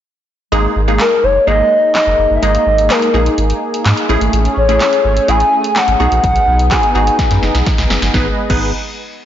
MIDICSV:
0, 0, Header, 1, 6, 480
1, 0, Start_track
1, 0, Key_signature, 5, "minor"
1, 0, Tempo, 476190
1, 527, Time_signature, 4, 2, 24, 8
1, 9324, End_track
2, 0, Start_track
2, 0, Title_t, "Soft synth lead"
2, 0, Program_c, 0, 80
2, 1008, Note_on_c, 0, 70, 96
2, 1248, Note_on_c, 0, 73, 100
2, 1263, Note_off_c, 0, 70, 0
2, 1480, Note_off_c, 0, 73, 0
2, 1486, Note_on_c, 0, 75, 111
2, 1933, Note_off_c, 0, 75, 0
2, 1966, Note_on_c, 0, 75, 104
2, 2348, Note_off_c, 0, 75, 0
2, 2375, Note_on_c, 0, 76, 78
2, 2446, Note_on_c, 0, 75, 108
2, 2462, Note_off_c, 0, 76, 0
2, 2928, Note_on_c, 0, 70, 85
2, 2943, Note_off_c, 0, 75, 0
2, 3407, Note_off_c, 0, 70, 0
2, 4609, Note_on_c, 0, 73, 87
2, 4832, Note_off_c, 0, 73, 0
2, 4850, Note_on_c, 0, 73, 99
2, 5328, Note_on_c, 0, 80, 108
2, 5343, Note_off_c, 0, 73, 0
2, 5808, Note_on_c, 0, 78, 106
2, 5823, Note_off_c, 0, 80, 0
2, 6281, Note_off_c, 0, 78, 0
2, 6288, Note_on_c, 0, 78, 105
2, 6766, Note_on_c, 0, 80, 94
2, 6781, Note_off_c, 0, 78, 0
2, 7487, Note_off_c, 0, 80, 0
2, 9324, End_track
3, 0, Start_track
3, 0, Title_t, "Analog synth pad"
3, 0, Program_c, 1, 89
3, 528, Note_on_c, 1, 58, 71
3, 528, Note_on_c, 1, 63, 87
3, 528, Note_on_c, 1, 68, 79
3, 4091, Note_off_c, 1, 58, 0
3, 4091, Note_off_c, 1, 63, 0
3, 4128, Note_on_c, 1, 61, 89
3, 4129, Note_on_c, 1, 57, 77
3, 6028, Note_off_c, 1, 61, 0
3, 6029, Note_off_c, 1, 57, 0
3, 6049, Note_on_c, 1, 59, 72
3, 6050, Note_on_c, 1, 63, 92
3, 8167, Note_off_c, 1, 68, 0
3, 8187, Note_off_c, 1, 59, 0
3, 8187, Note_off_c, 1, 63, 0
3, 8208, Note_on_c, 1, 56, 72
3, 8208, Note_on_c, 1, 68, 64
3, 8208, Note_on_c, 1, 71, 63
3, 8208, Note_on_c, 1, 75, 78
3, 8431, Note_off_c, 1, 56, 0
3, 8431, Note_off_c, 1, 68, 0
3, 8431, Note_off_c, 1, 71, 0
3, 8431, Note_off_c, 1, 75, 0
3, 9324, End_track
4, 0, Start_track
4, 0, Title_t, "Synth stab"
4, 0, Program_c, 2, 62
4, 524, Note_on_c, 2, 56, 89
4, 525, Note_on_c, 2, 58, 85
4, 527, Note_on_c, 2, 63, 84
4, 528, Note_on_c, 2, 68, 98
4, 816, Note_off_c, 2, 56, 0
4, 817, Note_off_c, 2, 58, 0
4, 818, Note_off_c, 2, 63, 0
4, 819, Note_off_c, 2, 68, 0
4, 884, Note_on_c, 2, 56, 72
4, 885, Note_on_c, 2, 58, 71
4, 887, Note_on_c, 2, 63, 73
4, 889, Note_on_c, 2, 68, 83
4, 1370, Note_off_c, 2, 56, 0
4, 1371, Note_off_c, 2, 58, 0
4, 1372, Note_off_c, 2, 63, 0
4, 1373, Note_off_c, 2, 68, 0
4, 1483, Note_on_c, 2, 56, 74
4, 1485, Note_on_c, 2, 58, 70
4, 1486, Note_on_c, 2, 63, 68
4, 1488, Note_on_c, 2, 68, 81
4, 2261, Note_off_c, 2, 56, 0
4, 2261, Note_off_c, 2, 58, 0
4, 2262, Note_off_c, 2, 63, 0
4, 2263, Note_off_c, 2, 68, 0
4, 2443, Note_on_c, 2, 56, 77
4, 2445, Note_on_c, 2, 58, 68
4, 2446, Note_on_c, 2, 63, 69
4, 2448, Note_on_c, 2, 68, 84
4, 2833, Note_off_c, 2, 56, 0
4, 2834, Note_off_c, 2, 58, 0
4, 2835, Note_off_c, 2, 63, 0
4, 2835, Note_off_c, 2, 68, 0
4, 2924, Note_on_c, 2, 56, 74
4, 2925, Note_on_c, 2, 58, 69
4, 2927, Note_on_c, 2, 63, 68
4, 2928, Note_on_c, 2, 68, 83
4, 3119, Note_off_c, 2, 56, 0
4, 3120, Note_off_c, 2, 58, 0
4, 3121, Note_off_c, 2, 63, 0
4, 3122, Note_off_c, 2, 68, 0
4, 3163, Note_on_c, 2, 56, 73
4, 3165, Note_on_c, 2, 58, 72
4, 3166, Note_on_c, 2, 63, 69
4, 3168, Note_on_c, 2, 68, 86
4, 3941, Note_off_c, 2, 56, 0
4, 3942, Note_off_c, 2, 58, 0
4, 3942, Note_off_c, 2, 63, 0
4, 3943, Note_off_c, 2, 68, 0
4, 4124, Note_on_c, 2, 57, 88
4, 4125, Note_on_c, 2, 61, 86
4, 4127, Note_on_c, 2, 64, 86
4, 4129, Note_on_c, 2, 68, 105
4, 4610, Note_off_c, 2, 57, 0
4, 4611, Note_off_c, 2, 61, 0
4, 4612, Note_off_c, 2, 64, 0
4, 4613, Note_off_c, 2, 68, 0
4, 4724, Note_on_c, 2, 57, 80
4, 4726, Note_on_c, 2, 61, 69
4, 4728, Note_on_c, 2, 64, 69
4, 4729, Note_on_c, 2, 68, 86
4, 5210, Note_off_c, 2, 57, 0
4, 5211, Note_off_c, 2, 61, 0
4, 5212, Note_off_c, 2, 64, 0
4, 5213, Note_off_c, 2, 68, 0
4, 5324, Note_on_c, 2, 57, 78
4, 5326, Note_on_c, 2, 61, 67
4, 5327, Note_on_c, 2, 64, 70
4, 5330, Note_on_c, 2, 68, 85
4, 6038, Note_off_c, 2, 68, 0
4, 6045, Note_on_c, 2, 59, 80
4, 6046, Note_off_c, 2, 57, 0
4, 6046, Note_off_c, 2, 61, 0
4, 6046, Note_on_c, 2, 63, 70
4, 6047, Note_off_c, 2, 64, 0
4, 6048, Note_on_c, 2, 66, 70
4, 6050, Note_on_c, 2, 68, 88
4, 6628, Note_off_c, 2, 59, 0
4, 6628, Note_off_c, 2, 63, 0
4, 6629, Note_off_c, 2, 66, 0
4, 6630, Note_off_c, 2, 68, 0
4, 6764, Note_on_c, 2, 59, 77
4, 6766, Note_on_c, 2, 63, 69
4, 6768, Note_on_c, 2, 66, 67
4, 6769, Note_on_c, 2, 68, 85
4, 6960, Note_off_c, 2, 59, 0
4, 6961, Note_off_c, 2, 63, 0
4, 6961, Note_off_c, 2, 66, 0
4, 6962, Note_off_c, 2, 68, 0
4, 7004, Note_on_c, 2, 59, 76
4, 7006, Note_on_c, 2, 63, 70
4, 7008, Note_on_c, 2, 66, 70
4, 7009, Note_on_c, 2, 68, 84
4, 7781, Note_off_c, 2, 59, 0
4, 7782, Note_off_c, 2, 63, 0
4, 7783, Note_off_c, 2, 66, 0
4, 7784, Note_off_c, 2, 68, 0
4, 8208, Note_on_c, 2, 59, 83
4, 8208, Note_on_c, 2, 63, 75
4, 8208, Note_on_c, 2, 68, 79
4, 8208, Note_on_c, 2, 71, 90
4, 8341, Note_off_c, 2, 59, 0
4, 8341, Note_off_c, 2, 63, 0
4, 8341, Note_off_c, 2, 71, 0
4, 8342, Note_off_c, 2, 68, 0
4, 8567, Note_on_c, 2, 63, 75
4, 8567, Note_on_c, 2, 68, 81
4, 8568, Note_on_c, 2, 59, 82
4, 8568, Note_on_c, 2, 71, 96
4, 8790, Note_off_c, 2, 59, 0
4, 8790, Note_off_c, 2, 63, 0
4, 8790, Note_off_c, 2, 68, 0
4, 8791, Note_off_c, 2, 71, 0
4, 9324, End_track
5, 0, Start_track
5, 0, Title_t, "Sub bass"
5, 0, Program_c, 3, 38
5, 527, Note_on_c, 3, 32, 113
5, 676, Note_off_c, 3, 32, 0
5, 767, Note_on_c, 3, 32, 101
5, 991, Note_off_c, 3, 32, 0
5, 1247, Note_on_c, 3, 30, 96
5, 1396, Note_off_c, 3, 30, 0
5, 1485, Note_on_c, 3, 32, 102
5, 1635, Note_off_c, 3, 32, 0
5, 2086, Note_on_c, 3, 30, 89
5, 2161, Note_off_c, 3, 30, 0
5, 2206, Note_on_c, 3, 30, 92
5, 2281, Note_off_c, 3, 30, 0
5, 2326, Note_on_c, 3, 31, 94
5, 2401, Note_off_c, 3, 31, 0
5, 2446, Note_on_c, 3, 32, 110
5, 2596, Note_off_c, 3, 32, 0
5, 2686, Note_on_c, 3, 32, 99
5, 2910, Note_off_c, 3, 32, 0
5, 3165, Note_on_c, 3, 34, 95
5, 3315, Note_off_c, 3, 34, 0
5, 3406, Note_on_c, 3, 32, 97
5, 3555, Note_off_c, 3, 32, 0
5, 3886, Note_on_c, 3, 44, 99
5, 3961, Note_off_c, 3, 44, 0
5, 4126, Note_on_c, 3, 33, 100
5, 4201, Note_off_c, 3, 33, 0
5, 4246, Note_on_c, 3, 32, 93
5, 4321, Note_off_c, 3, 32, 0
5, 4366, Note_on_c, 3, 33, 112
5, 4515, Note_off_c, 3, 33, 0
5, 4607, Note_on_c, 3, 33, 96
5, 4830, Note_off_c, 3, 33, 0
5, 5087, Note_on_c, 3, 32, 90
5, 5236, Note_off_c, 3, 32, 0
5, 5327, Note_on_c, 3, 33, 99
5, 5476, Note_off_c, 3, 33, 0
5, 5927, Note_on_c, 3, 32, 101
5, 6001, Note_off_c, 3, 32, 0
5, 6048, Note_on_c, 3, 35, 96
5, 6122, Note_off_c, 3, 35, 0
5, 6167, Note_on_c, 3, 34, 87
5, 6241, Note_off_c, 3, 34, 0
5, 6287, Note_on_c, 3, 35, 115
5, 6436, Note_off_c, 3, 35, 0
5, 6527, Note_on_c, 3, 35, 109
5, 6751, Note_off_c, 3, 35, 0
5, 7007, Note_on_c, 3, 32, 94
5, 7156, Note_off_c, 3, 32, 0
5, 7368, Note_on_c, 3, 42, 93
5, 7442, Note_off_c, 3, 42, 0
5, 7487, Note_on_c, 3, 30, 91
5, 7562, Note_off_c, 3, 30, 0
5, 7608, Note_on_c, 3, 35, 92
5, 7682, Note_off_c, 3, 35, 0
5, 7848, Note_on_c, 3, 35, 99
5, 7922, Note_off_c, 3, 35, 0
5, 7967, Note_on_c, 3, 30, 89
5, 8042, Note_off_c, 3, 30, 0
5, 8087, Note_on_c, 3, 31, 97
5, 8161, Note_off_c, 3, 31, 0
5, 8207, Note_on_c, 3, 32, 100
5, 8341, Note_off_c, 3, 32, 0
5, 8567, Note_on_c, 3, 32, 100
5, 8790, Note_off_c, 3, 32, 0
5, 9324, End_track
6, 0, Start_track
6, 0, Title_t, "Drums"
6, 1003, Note_on_c, 9, 38, 85
6, 1005, Note_on_c, 9, 39, 111
6, 1104, Note_off_c, 9, 38, 0
6, 1106, Note_off_c, 9, 39, 0
6, 1965, Note_on_c, 9, 38, 88
6, 1967, Note_on_c, 9, 39, 107
6, 2066, Note_off_c, 9, 38, 0
6, 2068, Note_off_c, 9, 39, 0
6, 2446, Note_on_c, 9, 42, 78
6, 2547, Note_off_c, 9, 42, 0
6, 2567, Note_on_c, 9, 42, 48
6, 2668, Note_off_c, 9, 42, 0
6, 2807, Note_on_c, 9, 42, 53
6, 2908, Note_off_c, 9, 42, 0
6, 2924, Note_on_c, 9, 38, 88
6, 2926, Note_on_c, 9, 39, 110
6, 2928, Note_on_c, 9, 42, 67
6, 3025, Note_off_c, 9, 38, 0
6, 3026, Note_off_c, 9, 39, 0
6, 3029, Note_off_c, 9, 42, 0
6, 3048, Note_on_c, 9, 42, 46
6, 3148, Note_off_c, 9, 42, 0
6, 3289, Note_on_c, 9, 42, 53
6, 3390, Note_off_c, 9, 42, 0
6, 3407, Note_on_c, 9, 42, 71
6, 3508, Note_off_c, 9, 42, 0
6, 3527, Note_on_c, 9, 42, 55
6, 3628, Note_off_c, 9, 42, 0
6, 3770, Note_on_c, 9, 42, 57
6, 3871, Note_off_c, 9, 42, 0
6, 3886, Note_on_c, 9, 38, 85
6, 3886, Note_on_c, 9, 42, 62
6, 3888, Note_on_c, 9, 39, 107
6, 3987, Note_off_c, 9, 38, 0
6, 3987, Note_off_c, 9, 42, 0
6, 3989, Note_off_c, 9, 39, 0
6, 4006, Note_on_c, 9, 42, 52
6, 4107, Note_off_c, 9, 42, 0
6, 4248, Note_on_c, 9, 42, 56
6, 4348, Note_off_c, 9, 42, 0
6, 4367, Note_on_c, 9, 42, 81
6, 4468, Note_off_c, 9, 42, 0
6, 4487, Note_on_c, 9, 42, 45
6, 4588, Note_off_c, 9, 42, 0
6, 4727, Note_on_c, 9, 42, 52
6, 4828, Note_off_c, 9, 42, 0
6, 4844, Note_on_c, 9, 38, 89
6, 4845, Note_on_c, 9, 39, 114
6, 4847, Note_on_c, 9, 42, 65
6, 4944, Note_off_c, 9, 38, 0
6, 4946, Note_off_c, 9, 39, 0
6, 4948, Note_off_c, 9, 42, 0
6, 4967, Note_on_c, 9, 42, 47
6, 5068, Note_off_c, 9, 42, 0
6, 5208, Note_on_c, 9, 42, 55
6, 5309, Note_off_c, 9, 42, 0
6, 5326, Note_on_c, 9, 42, 70
6, 5427, Note_off_c, 9, 42, 0
6, 5445, Note_on_c, 9, 42, 54
6, 5546, Note_off_c, 9, 42, 0
6, 5688, Note_on_c, 9, 42, 58
6, 5789, Note_off_c, 9, 42, 0
6, 5805, Note_on_c, 9, 38, 87
6, 5805, Note_on_c, 9, 42, 64
6, 5807, Note_on_c, 9, 39, 110
6, 5906, Note_off_c, 9, 38, 0
6, 5906, Note_off_c, 9, 42, 0
6, 5908, Note_off_c, 9, 39, 0
6, 5926, Note_on_c, 9, 42, 54
6, 6027, Note_off_c, 9, 42, 0
6, 6167, Note_on_c, 9, 42, 55
6, 6268, Note_off_c, 9, 42, 0
6, 6286, Note_on_c, 9, 42, 79
6, 6287, Note_on_c, 9, 36, 108
6, 6387, Note_off_c, 9, 42, 0
6, 6388, Note_off_c, 9, 36, 0
6, 6407, Note_on_c, 9, 42, 47
6, 6508, Note_off_c, 9, 42, 0
6, 6647, Note_on_c, 9, 42, 54
6, 6748, Note_off_c, 9, 42, 0
6, 6764, Note_on_c, 9, 38, 86
6, 6765, Note_on_c, 9, 39, 110
6, 6767, Note_on_c, 9, 42, 67
6, 6769, Note_on_c, 9, 36, 109
6, 6864, Note_off_c, 9, 38, 0
6, 6866, Note_off_c, 9, 39, 0
6, 6868, Note_off_c, 9, 42, 0
6, 6870, Note_off_c, 9, 36, 0
6, 6887, Note_on_c, 9, 42, 48
6, 6988, Note_off_c, 9, 42, 0
6, 7128, Note_on_c, 9, 42, 57
6, 7229, Note_off_c, 9, 42, 0
6, 7246, Note_on_c, 9, 36, 99
6, 7247, Note_on_c, 9, 38, 55
6, 7247, Note_on_c, 9, 42, 72
6, 7347, Note_off_c, 9, 36, 0
6, 7348, Note_off_c, 9, 38, 0
6, 7348, Note_off_c, 9, 42, 0
6, 7366, Note_on_c, 9, 42, 59
6, 7367, Note_on_c, 9, 38, 50
6, 7467, Note_off_c, 9, 38, 0
6, 7467, Note_off_c, 9, 42, 0
6, 7487, Note_on_c, 9, 38, 63
6, 7587, Note_off_c, 9, 38, 0
6, 7607, Note_on_c, 9, 38, 67
6, 7609, Note_on_c, 9, 42, 59
6, 7708, Note_off_c, 9, 38, 0
6, 7710, Note_off_c, 9, 42, 0
6, 7726, Note_on_c, 9, 42, 63
6, 7727, Note_on_c, 9, 36, 111
6, 7727, Note_on_c, 9, 38, 78
6, 7826, Note_off_c, 9, 42, 0
6, 7827, Note_off_c, 9, 38, 0
6, 7828, Note_off_c, 9, 36, 0
6, 7845, Note_on_c, 9, 42, 56
6, 7846, Note_on_c, 9, 38, 76
6, 7946, Note_off_c, 9, 42, 0
6, 7947, Note_off_c, 9, 38, 0
6, 7966, Note_on_c, 9, 38, 101
6, 8067, Note_off_c, 9, 38, 0
6, 8087, Note_on_c, 9, 38, 83
6, 8087, Note_on_c, 9, 42, 56
6, 8187, Note_off_c, 9, 38, 0
6, 8188, Note_off_c, 9, 42, 0
6, 8206, Note_on_c, 9, 38, 82
6, 8207, Note_on_c, 9, 36, 99
6, 8307, Note_off_c, 9, 38, 0
6, 8308, Note_off_c, 9, 36, 0
6, 8567, Note_on_c, 9, 36, 97
6, 8567, Note_on_c, 9, 49, 86
6, 8668, Note_off_c, 9, 36, 0
6, 8668, Note_off_c, 9, 49, 0
6, 9324, End_track
0, 0, End_of_file